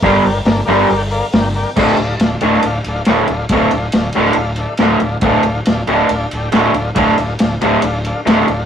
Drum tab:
CC |----------------|x---------------|----------------|----------------|
RD |----------------|--x-x-x-x-x-x-x-|x-x-x-x-x-x-x-x-|x-x-x-x-x-x-x-x-|
HH |o-o-o-o-o-o-o-o-|----------------|----------------|----------------|
SD |----o-------o---|-o--o--o----o---|----o--o----o---|----o-------o---|
BD |o---------------|o---------------|o---------------|o---------------|

CC |----------------|
RD |x-x-x-x-x-x-x-x-|
HH |----------------|
SD |-o--o-------o---|
BD |o---------------|